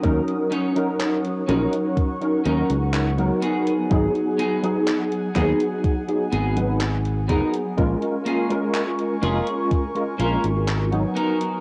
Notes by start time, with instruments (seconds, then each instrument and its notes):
Already playing: clean electric guitar C#4 D#4 F#4 A#4, ambient pad C#5 F#5 D#6
0.03 fingered electric bass D#2, synth keys F#3 C#4 D#4 A#4, kick, closed hi-hat
0.28 closed hi-hat
0.51 clean electric guitar C#4 D#4 F#4 C#5, closed hi-hat
0.75 synth keys F#3 C#4 D#4 A#4, closed hi-hat
1.00 clap, closed hi-hat
1.25 closed hi-hat
1.48 fingered electric bass A#1, synth keys F#3 C#4 D#4 A#4, clean electric guitar C#4 D#4 F#4 A#4, ambient pad C#6, closed hi-hat
1.73 closed hi-hat
1.97 kick, closed hi-hat
2.20 synth keys F#3 C#4 D#4 A#4, closed hi-hat
2.44 fingered electric bass D#2, synth keys F#3 C#4 D#4 A#4, clean electric guitar C#4 D#4 F#4 A#4, closed hi-hat
2.70 fingered electric bass C#2, closed hi-hat
2.94 clap, closed hi-hat
3.17 synth keys F#3 B3 D#4 A#4, closed hi-hat
3.41 clean electric guitar B3 D#4 F#4 G#4, ambient pad G#4 G#5, closed hi-hat
3.67 closed hi-hat
3.90 fingered electric bass G#1, synth keys F#3 B3 D#4 G#4, kick, closed hi-hat
4.15 closed hi-hat
4.38 clean electric guitar B3 D#4 F#4 G#4, closed hi-hat
4.62 synth keys F#3 B3 D#4 G#4, closed hi-hat
4.88 clap, closed hi-hat
5.12 closed hi-hat
5.35 fingered electric bass D#2, synth keys F#3 B3 D#4 G#4, clean electric guitar B3 D#4 F#4 G#4, kick, clap, closed hi-hat
5.60 closed hi-hat
5.84 kick, closed hi-hat
6.08 synth keys F#3 B3 D#4 G#4, closed hi-hat
6.32 fingered electric bass G#1, clean electric guitar B3 D#4 F#4 G#4, closed hi-hat
6.56 synth keys F#3 B3 D#4 B4, closed hi-hat
6.81 clap, closed hi-hat
7.05 closed hi-hat
7.28 synth keys F#3 B3 D#4 G#4, clean electric guitar B3 D#4 F#4 A#4, kick, closed hi-hat
7.54 closed hi-hat
7.77 fingered electric bass A#1, synth keys G#3 C#4 F4 A#4, ambient pad A#4 G#5 C#6, kick, closed hi-hat
8.02 closed hi-hat
8.25 clean electric guitar A#3 C#4 F4 G#4, closed hi-hat
8.49 synth keys G#3 C#4 F4 A#4, closed hi-hat
8.74 clap, closed hi-hat
8.99 closed hi-hat
9.22 fingered electric bass F1, synth keys G#3 C#4 F4 A#4, clean electric guitar A#3 C#4 F4 G#4, closed hi-hat
9.47 closed hi-hat
9.71 kick, closed hi-hat
9.95 synth keys G#3 C#4 F4 A#4, closed hi-hat
10.18 fingered electric bass A#1, synth keys G#3 C#4 F4 A#4, clean electric guitar A#3 C#4 F4 A#4, closed hi-hat
10.44 fingered electric bass G#1, closed hi-hat
10.68 clap, closed hi-hat
10.91 synth keys F#3 B3 D#4, closed hi-hat
11.15 clean electric guitar B3 D#4 F#4 A#4, ambient pad B3 A#5 D#6, closed hi-hat
11.41 closed hi-hat